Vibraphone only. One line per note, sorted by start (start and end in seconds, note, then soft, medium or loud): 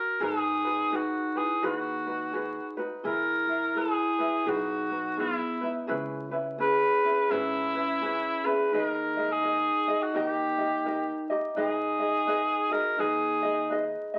0.00 0.19 F#4 medium
0.22 0.92 D#4 medium
0.93 1.37 D#4 medium
1.38 1.64 E4 medium
1.64 2.74 D#4 medium
3.04 3.71 E4 medium
3.75 4.46 E4 medium
4.46 5.17 D#4 medium
5.17 5.75 B3 medium
6.59 7.26 G#4 medium
7.30 8.45 C#4 medium
8.43 8.72 G#4 medium
8.70 9.28 D#4 medium
9.29 9.99 D#4 medium
10.00 10.13 D#4 medium
10.14 11.30 D#4 medium
11.57 12.68 D#4 medium
12.68 12.97 F#4 medium
12.96 13.69 D#4 medium